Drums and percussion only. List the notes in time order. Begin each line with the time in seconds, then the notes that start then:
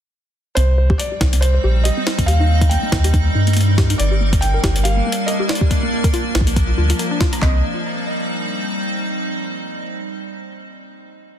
0.57 closed hi-hat
0.90 kick
1.00 closed hi-hat
1.21 kick, snare
1.33 closed hi-hat
1.42 closed hi-hat
1.85 closed hi-hat
2.07 snare
2.19 kick, closed hi-hat
2.28 closed hi-hat
2.61 kick, closed hi-hat
2.71 closed hi-hat
2.92 kick, snare
3.04 closed hi-hat
3.14 kick, closed hi-hat
3.47 closed hi-hat
3.53 closed hi-hat
3.57 closed hi-hat
3.61 closed hi-hat
3.78 kick, snare
3.90 closed hi-hat
4.00 closed hi-hat
4.33 kick, closed hi-hat
4.42 closed hi-hat
4.64 kick, snare
4.76 closed hi-hat
4.85 closed hi-hat
5.12 closed hi-hat
5.28 closed hi-hat
5.49 snare
5.55 closed hi-hat
5.61 kick
5.71 kick, closed hi-hat
6.04 kick, closed hi-hat
6.14 closed hi-hat
6.35 snare
6.41 kick
6.47 closed hi-hat
6.56 kick, closed hi-hat
6.90 closed hi-hat
6.99 closed hi-hat
7.21 kick, snare
7.33 closed hi-hat
7.42 kick, clap